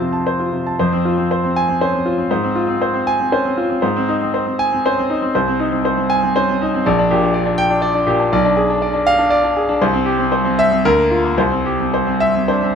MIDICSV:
0, 0, Header, 1, 2, 480
1, 0, Start_track
1, 0, Tempo, 538600
1, 708, Tempo, 507614
1, 709, Time_signature, 3, 2, 24, 8
1, 4548, Tempo, 496689
1, 9828, Tempo, 540054
1, 11989, End_track
2, 0, Start_track
2, 0, Title_t, "Grand piano"
2, 0, Program_c, 0, 0
2, 0, Control_c, 0, 64, 127
2, 0, Note_on_c, 0, 41, 66
2, 0, Note_on_c, 0, 48, 50
2, 0, Note_on_c, 0, 60, 51
2, 0, Note_on_c, 0, 65, 47
2, 0, Note_on_c, 0, 72, 52
2, 0, Note_on_c, 0, 81, 73
2, 1, Note_off_c, 0, 48, 0
2, 1, Note_on_c, 0, 48, 53
2, 113, Note_off_c, 0, 81, 0
2, 113, Note_on_c, 0, 81, 50
2, 187, Note_off_c, 0, 48, 0
2, 237, Note_off_c, 0, 72, 0
2, 237, Note_on_c, 0, 72, 59
2, 302, Note_off_c, 0, 81, 0
2, 351, Note_off_c, 0, 65, 0
2, 351, Note_on_c, 0, 65, 47
2, 425, Note_off_c, 0, 72, 0
2, 466, Note_on_c, 0, 48, 48
2, 543, Note_off_c, 0, 65, 0
2, 593, Note_on_c, 0, 81, 51
2, 659, Note_off_c, 0, 48, 0
2, 677, Note_off_c, 0, 41, 0
2, 708, Note_on_c, 0, 72, 64
2, 709, Note_on_c, 0, 41, 70
2, 710, Note_off_c, 0, 81, 0
2, 725, Control_c, 0, 64, 0
2, 730, Note_off_c, 0, 60, 0
2, 831, Note_on_c, 0, 60, 61
2, 866, Control_c, 0, 64, 127
2, 951, Note_on_c, 0, 65, 59
2, 1025, Note_off_c, 0, 60, 0
2, 1069, Note_on_c, 0, 60, 56
2, 1097, Note_off_c, 0, 72, 0
2, 1196, Note_on_c, 0, 72, 66
2, 1262, Note_off_c, 0, 60, 0
2, 1320, Note_on_c, 0, 60, 59
2, 1335, Note_off_c, 0, 65, 0
2, 1436, Note_on_c, 0, 80, 84
2, 1506, Note_off_c, 0, 60, 0
2, 1553, Note_on_c, 0, 60, 56
2, 1575, Note_off_c, 0, 72, 0
2, 1671, Note_on_c, 0, 72, 69
2, 1672, Note_on_c, 0, 61, 56
2, 1741, Note_off_c, 0, 60, 0
2, 1784, Note_on_c, 0, 60, 50
2, 1789, Note_off_c, 0, 61, 0
2, 1813, Note_off_c, 0, 80, 0
2, 1900, Note_on_c, 0, 65, 59
2, 1975, Note_off_c, 0, 60, 0
2, 2019, Note_on_c, 0, 60, 55
2, 2049, Note_off_c, 0, 72, 0
2, 2105, Note_off_c, 0, 41, 0
2, 2138, Note_on_c, 0, 44, 69
2, 2140, Note_off_c, 0, 60, 0
2, 2140, Note_off_c, 0, 65, 0
2, 2140, Note_on_c, 0, 72, 61
2, 2158, Control_c, 0, 64, 0
2, 2259, Note_on_c, 0, 60, 58
2, 2300, Control_c, 0, 64, 127
2, 2372, Note_on_c, 0, 65, 61
2, 2451, Note_off_c, 0, 60, 0
2, 2495, Note_on_c, 0, 60, 58
2, 2524, Note_off_c, 0, 72, 0
2, 2619, Note_on_c, 0, 72, 63
2, 2692, Note_off_c, 0, 60, 0
2, 2732, Note_on_c, 0, 60, 57
2, 2764, Note_off_c, 0, 65, 0
2, 2860, Note_on_c, 0, 80, 85
2, 2933, Note_off_c, 0, 60, 0
2, 2981, Note_on_c, 0, 60, 51
2, 3009, Note_off_c, 0, 72, 0
2, 3098, Note_on_c, 0, 61, 59
2, 3099, Note_on_c, 0, 72, 70
2, 3177, Note_off_c, 0, 60, 0
2, 3221, Note_on_c, 0, 60, 55
2, 3223, Note_off_c, 0, 61, 0
2, 3249, Note_off_c, 0, 80, 0
2, 3335, Note_on_c, 0, 65, 59
2, 3417, Note_off_c, 0, 60, 0
2, 3456, Note_on_c, 0, 60, 56
2, 3488, Note_off_c, 0, 72, 0
2, 3549, Note_off_c, 0, 44, 0
2, 3570, Note_on_c, 0, 72, 62
2, 3573, Note_on_c, 0, 44, 72
2, 3582, Note_off_c, 0, 65, 0
2, 3583, Note_off_c, 0, 60, 0
2, 3604, Control_c, 0, 64, 0
2, 3706, Note_on_c, 0, 60, 66
2, 3758, Control_c, 0, 64, 127
2, 3821, Note_on_c, 0, 63, 63
2, 3901, Note_off_c, 0, 60, 0
2, 3943, Note_on_c, 0, 60, 58
2, 3965, Note_off_c, 0, 72, 0
2, 4061, Note_on_c, 0, 72, 62
2, 4140, Note_off_c, 0, 60, 0
2, 4179, Note_on_c, 0, 60, 53
2, 4212, Note_off_c, 0, 63, 0
2, 4299, Note_on_c, 0, 80, 90
2, 4377, Note_off_c, 0, 60, 0
2, 4424, Note_on_c, 0, 60, 59
2, 4449, Note_off_c, 0, 72, 0
2, 4548, Note_on_c, 0, 61, 51
2, 4549, Note_on_c, 0, 72, 71
2, 4618, Note_off_c, 0, 60, 0
2, 4669, Note_off_c, 0, 61, 0
2, 4669, Note_on_c, 0, 60, 58
2, 4688, Note_off_c, 0, 80, 0
2, 4783, Note_on_c, 0, 63, 65
2, 4862, Note_off_c, 0, 60, 0
2, 4901, Note_on_c, 0, 60, 63
2, 4934, Note_off_c, 0, 72, 0
2, 4983, Note_off_c, 0, 44, 0
2, 5026, Note_off_c, 0, 60, 0
2, 5026, Note_on_c, 0, 72, 67
2, 5027, Note_on_c, 0, 36, 73
2, 5028, Note_off_c, 0, 63, 0
2, 5048, Control_c, 0, 64, 0
2, 5148, Note_on_c, 0, 60, 61
2, 5192, Control_c, 0, 64, 127
2, 5263, Note_on_c, 0, 63, 66
2, 5341, Note_off_c, 0, 60, 0
2, 5384, Note_on_c, 0, 60, 59
2, 5412, Note_off_c, 0, 72, 0
2, 5510, Note_on_c, 0, 72, 66
2, 5580, Note_off_c, 0, 60, 0
2, 5627, Note_on_c, 0, 60, 60
2, 5653, Note_off_c, 0, 63, 0
2, 5747, Note_on_c, 0, 80, 90
2, 5822, Note_off_c, 0, 60, 0
2, 5878, Note_on_c, 0, 60, 63
2, 5896, Note_off_c, 0, 72, 0
2, 5999, Note_on_c, 0, 72, 76
2, 6005, Note_on_c, 0, 61, 60
2, 6067, Note_off_c, 0, 60, 0
2, 6119, Note_off_c, 0, 61, 0
2, 6130, Note_on_c, 0, 60, 59
2, 6134, Note_off_c, 0, 80, 0
2, 6252, Note_on_c, 0, 63, 66
2, 6312, Note_off_c, 0, 60, 0
2, 6373, Note_on_c, 0, 60, 66
2, 6378, Note_off_c, 0, 72, 0
2, 6430, Note_off_c, 0, 36, 0
2, 6433, Note_off_c, 0, 63, 0
2, 6481, Note_off_c, 0, 60, 0
2, 6485, Note_on_c, 0, 74, 72
2, 6486, Control_c, 0, 64, 0
2, 6490, Note_on_c, 0, 34, 87
2, 6608, Note_on_c, 0, 62, 71
2, 6643, Control_c, 0, 64, 127
2, 6723, Note_on_c, 0, 67, 68
2, 6726, Note_on_c, 0, 46, 67
2, 6789, Note_off_c, 0, 62, 0
2, 6838, Note_on_c, 0, 62, 61
2, 6858, Note_off_c, 0, 74, 0
2, 6907, Note_off_c, 0, 46, 0
2, 6949, Note_on_c, 0, 74, 69
2, 7022, Note_off_c, 0, 62, 0
2, 7064, Note_on_c, 0, 62, 62
2, 7095, Note_off_c, 0, 67, 0
2, 7180, Note_on_c, 0, 79, 101
2, 7254, Note_off_c, 0, 62, 0
2, 7298, Note_on_c, 0, 62, 68
2, 7327, Note_off_c, 0, 74, 0
2, 7412, Note_on_c, 0, 74, 80
2, 7490, Note_off_c, 0, 62, 0
2, 7532, Note_on_c, 0, 62, 63
2, 7562, Note_off_c, 0, 79, 0
2, 7650, Note_on_c, 0, 46, 71
2, 7651, Note_on_c, 0, 67, 74
2, 7728, Note_off_c, 0, 62, 0
2, 7777, Note_on_c, 0, 62, 63
2, 7799, Note_off_c, 0, 74, 0
2, 7847, Note_off_c, 0, 46, 0
2, 7871, Note_off_c, 0, 34, 0
2, 7896, Note_off_c, 0, 67, 0
2, 7899, Note_off_c, 0, 62, 0
2, 7902, Note_on_c, 0, 35, 88
2, 7903, Note_on_c, 0, 74, 83
2, 7920, Control_c, 0, 64, 0
2, 8020, Note_on_c, 0, 62, 72
2, 8095, Control_c, 0, 64, 127
2, 8134, Note_on_c, 0, 68, 69
2, 8212, Note_off_c, 0, 62, 0
2, 8261, Note_on_c, 0, 62, 68
2, 8285, Note_off_c, 0, 74, 0
2, 8379, Note_on_c, 0, 74, 72
2, 8451, Note_off_c, 0, 62, 0
2, 8491, Note_on_c, 0, 62, 66
2, 8519, Note_off_c, 0, 68, 0
2, 8616, Note_on_c, 0, 77, 105
2, 8685, Note_off_c, 0, 62, 0
2, 8732, Note_on_c, 0, 62, 68
2, 8761, Note_off_c, 0, 74, 0
2, 8847, Note_on_c, 0, 74, 82
2, 8927, Note_off_c, 0, 62, 0
2, 8980, Note_on_c, 0, 62, 65
2, 9001, Note_off_c, 0, 77, 0
2, 9100, Note_on_c, 0, 68, 68
2, 9173, Note_off_c, 0, 62, 0
2, 9217, Note_on_c, 0, 62, 69
2, 9240, Note_off_c, 0, 74, 0
2, 9304, Note_off_c, 0, 35, 0
2, 9340, Note_off_c, 0, 62, 0
2, 9340, Note_on_c, 0, 72, 73
2, 9341, Note_on_c, 0, 36, 88
2, 9342, Note_off_c, 0, 68, 0
2, 9360, Control_c, 0, 64, 0
2, 9459, Note_on_c, 0, 60, 71
2, 9530, Control_c, 0, 64, 127
2, 9574, Note_on_c, 0, 67, 67
2, 9655, Note_off_c, 0, 60, 0
2, 9700, Note_on_c, 0, 60, 68
2, 9729, Note_off_c, 0, 72, 0
2, 9828, Note_on_c, 0, 72, 67
2, 9895, Note_off_c, 0, 60, 0
2, 9941, Note_on_c, 0, 60, 64
2, 9961, Note_off_c, 0, 67, 0
2, 10067, Note_on_c, 0, 76, 101
2, 10127, Note_off_c, 0, 60, 0
2, 10178, Note_on_c, 0, 60, 58
2, 10197, Note_off_c, 0, 72, 0
2, 10264, Note_off_c, 0, 36, 0
2, 10293, Note_off_c, 0, 60, 0
2, 10296, Note_off_c, 0, 76, 0
2, 10302, Note_on_c, 0, 70, 100
2, 10304, Note_on_c, 0, 38, 82
2, 10306, Control_c, 0, 64, 0
2, 10414, Note_on_c, 0, 58, 56
2, 10454, Control_c, 0, 64, 127
2, 10529, Note_on_c, 0, 65, 62
2, 10602, Note_off_c, 0, 58, 0
2, 10651, Note_on_c, 0, 58, 64
2, 10678, Note_off_c, 0, 70, 0
2, 10763, Note_off_c, 0, 38, 0
2, 10769, Note_on_c, 0, 36, 76
2, 10770, Note_on_c, 0, 72, 68
2, 10772, Note_off_c, 0, 65, 0
2, 10773, Note_off_c, 0, 58, 0
2, 10790, Control_c, 0, 64, 0
2, 10893, Note_on_c, 0, 60, 60
2, 10923, Control_c, 0, 64, 127
2, 11016, Note_on_c, 0, 67, 63
2, 11093, Note_off_c, 0, 60, 0
2, 11144, Note_on_c, 0, 60, 57
2, 11168, Note_off_c, 0, 72, 0
2, 11266, Note_on_c, 0, 72, 65
2, 11341, Note_off_c, 0, 60, 0
2, 11382, Note_on_c, 0, 60, 56
2, 11412, Note_off_c, 0, 67, 0
2, 11503, Note_on_c, 0, 76, 89
2, 11579, Note_off_c, 0, 60, 0
2, 11632, Note_on_c, 0, 60, 54
2, 11653, Note_off_c, 0, 72, 0
2, 11751, Note_on_c, 0, 72, 68
2, 11755, Note_on_c, 0, 62, 58
2, 11822, Note_off_c, 0, 60, 0
2, 11872, Note_off_c, 0, 62, 0
2, 11876, Note_on_c, 0, 60, 56
2, 11889, Note_off_c, 0, 76, 0
2, 11989, Note_off_c, 0, 36, 0
2, 11989, Note_off_c, 0, 60, 0
2, 11989, Note_off_c, 0, 72, 0
2, 11989, End_track
0, 0, End_of_file